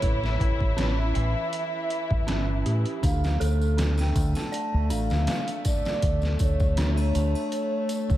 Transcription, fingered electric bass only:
0, 0, Header, 1, 2, 480
1, 0, Start_track
1, 0, Key_signature, -1, "minor"
1, 0, Tempo, 750000
1, 17, Time_signature, 4, 2, 24, 8
1, 5231, End_track
2, 0, Start_track
2, 0, Title_t, "Fingered electric bass"
2, 0, Program_c, 0, 33
2, 15, Note_on_c, 0, 33, 93
2, 229, Note_off_c, 0, 33, 0
2, 259, Note_on_c, 0, 33, 84
2, 716, Note_off_c, 0, 33, 0
2, 738, Note_on_c, 0, 33, 101
2, 851, Note_off_c, 0, 33, 0
2, 1350, Note_on_c, 0, 33, 94
2, 1458, Note_off_c, 0, 33, 0
2, 1458, Note_on_c, 0, 31, 79
2, 1671, Note_off_c, 0, 31, 0
2, 1700, Note_on_c, 0, 45, 80
2, 1812, Note_off_c, 0, 45, 0
2, 1938, Note_on_c, 0, 38, 99
2, 2151, Note_off_c, 0, 38, 0
2, 2181, Note_on_c, 0, 38, 85
2, 2638, Note_off_c, 0, 38, 0
2, 2658, Note_on_c, 0, 38, 99
2, 2771, Note_off_c, 0, 38, 0
2, 3032, Note_on_c, 0, 38, 100
2, 3143, Note_off_c, 0, 38, 0
2, 3143, Note_on_c, 0, 33, 89
2, 3254, Note_off_c, 0, 33, 0
2, 3272, Note_on_c, 0, 38, 99
2, 3366, Note_off_c, 0, 38, 0
2, 3859, Note_on_c, 0, 38, 94
2, 4071, Note_off_c, 0, 38, 0
2, 4097, Note_on_c, 0, 38, 83
2, 4555, Note_off_c, 0, 38, 0
2, 4578, Note_on_c, 0, 38, 105
2, 4691, Note_off_c, 0, 38, 0
2, 5182, Note_on_c, 0, 38, 97
2, 5231, Note_off_c, 0, 38, 0
2, 5231, End_track
0, 0, End_of_file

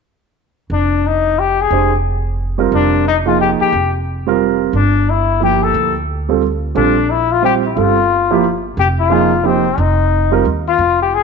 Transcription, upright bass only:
0, 0, Header, 1, 3, 480
1, 0, Start_track
1, 0, Tempo, 336134
1, 1010, Time_signature, 3, 2, 24, 8
1, 16036, End_track
2, 0, Start_track
2, 0, Title_t, "Upright bass"
2, 0, Program_c, 0, 32
2, 997, Note_on_c, 0, 29, 67
2, 2387, Note_off_c, 0, 29, 0
2, 2435, Note_on_c, 0, 29, 67
2, 3827, Note_off_c, 0, 29, 0
2, 3881, Note_on_c, 0, 29, 71
2, 5088, Note_off_c, 0, 29, 0
2, 5319, Note_on_c, 0, 29, 72
2, 6709, Note_off_c, 0, 29, 0
2, 6755, Note_on_c, 0, 31, 67
2, 8147, Note_off_c, 0, 31, 0
2, 8201, Note_on_c, 0, 38, 74
2, 9589, Note_off_c, 0, 38, 0
2, 9645, Note_on_c, 0, 34, 68
2, 11031, Note_off_c, 0, 34, 0
2, 11089, Note_on_c, 0, 31, 67
2, 12472, Note_off_c, 0, 31, 0
2, 12524, Note_on_c, 0, 29, 72
2, 13909, Note_off_c, 0, 29, 0
2, 13961, Note_on_c, 0, 29, 75
2, 14867, Note_off_c, 0, 29, 0
2, 14922, Note_on_c, 0, 39, 65
2, 15371, Note_off_c, 0, 39, 0
2, 15399, Note_on_c, 0, 29, 72
2, 16036, Note_off_c, 0, 29, 0
2, 16036, End_track
3, 0, Start_track
3, 0, Title_t, "Muted upright bass strokes"
3, 5142, Note_on_c, 9, 29, 31
3, 5284, Note_off_c, 9, 29, 0
3, 16036, End_track
0, 0, End_of_file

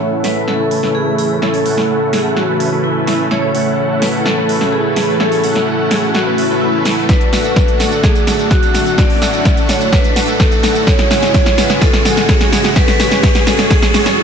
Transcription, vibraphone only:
0, 0, Header, 1, 2, 480
1, 0, Start_track
1, 0, Key_signature, 3, "major"
1, 0, Tempo, 472441
1, 1445, Time_signature, 4, 2, 24, 8
1, 14459, End_track
2, 0, Start_track
2, 0, Title_t, "Vibraphone"
2, 0, Program_c, 0, 11
2, 0, Note_on_c, 0, 73, 100
2, 245, Note_on_c, 0, 71, 85
2, 267, Note_off_c, 0, 73, 0
2, 484, Note_on_c, 0, 69, 87
2, 492, Note_off_c, 0, 71, 0
2, 930, Note_off_c, 0, 69, 0
2, 963, Note_on_c, 0, 68, 87
2, 1187, Note_off_c, 0, 68, 0
2, 1203, Note_on_c, 0, 68, 89
2, 1311, Note_off_c, 0, 68, 0
2, 1443, Note_on_c, 0, 69, 97
2, 2123, Note_off_c, 0, 69, 0
2, 2163, Note_on_c, 0, 68, 84
2, 2403, Note_on_c, 0, 66, 87
2, 2411, Note_off_c, 0, 68, 0
2, 2850, Note_off_c, 0, 66, 0
2, 2884, Note_on_c, 0, 64, 87
2, 3111, Note_off_c, 0, 64, 0
2, 3124, Note_on_c, 0, 64, 87
2, 3347, Note_off_c, 0, 64, 0
2, 3363, Note_on_c, 0, 73, 104
2, 4083, Note_on_c, 0, 71, 94
2, 4105, Note_off_c, 0, 73, 0
2, 4322, Note_on_c, 0, 69, 97
2, 4331, Note_off_c, 0, 71, 0
2, 4801, Note_on_c, 0, 68, 96
2, 4818, Note_off_c, 0, 69, 0
2, 5026, Note_off_c, 0, 68, 0
2, 5041, Note_on_c, 0, 68, 93
2, 5150, Note_off_c, 0, 68, 0
2, 5283, Note_on_c, 0, 69, 101
2, 6002, Note_on_c, 0, 68, 90
2, 6025, Note_off_c, 0, 69, 0
2, 6111, Note_off_c, 0, 68, 0
2, 6240, Note_on_c, 0, 66, 91
2, 6720, Note_on_c, 0, 64, 94
2, 6737, Note_off_c, 0, 66, 0
2, 6829, Note_off_c, 0, 64, 0
2, 6960, Note_on_c, 0, 64, 93
2, 7202, Note_on_c, 0, 71, 111
2, 7209, Note_off_c, 0, 64, 0
2, 7883, Note_off_c, 0, 71, 0
2, 7919, Note_on_c, 0, 69, 99
2, 8159, Note_on_c, 0, 68, 100
2, 8169, Note_off_c, 0, 69, 0
2, 8641, Note_on_c, 0, 66, 101
2, 8656, Note_off_c, 0, 68, 0
2, 8866, Note_off_c, 0, 66, 0
2, 8880, Note_on_c, 0, 66, 97
2, 9120, Note_on_c, 0, 74, 119
2, 9129, Note_off_c, 0, 66, 0
2, 9801, Note_off_c, 0, 74, 0
2, 9841, Note_on_c, 0, 73, 102
2, 10082, Note_on_c, 0, 71, 106
2, 10090, Note_off_c, 0, 73, 0
2, 10562, Note_on_c, 0, 69, 98
2, 10578, Note_off_c, 0, 71, 0
2, 10789, Note_off_c, 0, 69, 0
2, 10802, Note_on_c, 0, 69, 101
2, 11040, Note_on_c, 0, 73, 113
2, 11050, Note_off_c, 0, 69, 0
2, 11721, Note_off_c, 0, 73, 0
2, 11762, Note_on_c, 0, 71, 96
2, 12002, Note_on_c, 0, 69, 97
2, 12010, Note_off_c, 0, 71, 0
2, 12483, Note_on_c, 0, 68, 97
2, 12497, Note_off_c, 0, 69, 0
2, 12710, Note_off_c, 0, 68, 0
2, 12723, Note_on_c, 0, 68, 98
2, 12831, Note_off_c, 0, 68, 0
2, 12963, Note_on_c, 0, 71, 109
2, 13036, Note_on_c, 0, 69, 91
2, 13037, Note_off_c, 0, 71, 0
2, 13106, Note_on_c, 0, 71, 107
2, 13107, Note_off_c, 0, 69, 0
2, 13682, Note_on_c, 0, 69, 96
2, 13701, Note_off_c, 0, 71, 0
2, 13922, Note_on_c, 0, 68, 98
2, 13931, Note_off_c, 0, 69, 0
2, 14369, Note_off_c, 0, 68, 0
2, 14404, Note_on_c, 0, 64, 93
2, 14459, Note_off_c, 0, 64, 0
2, 14459, End_track
0, 0, End_of_file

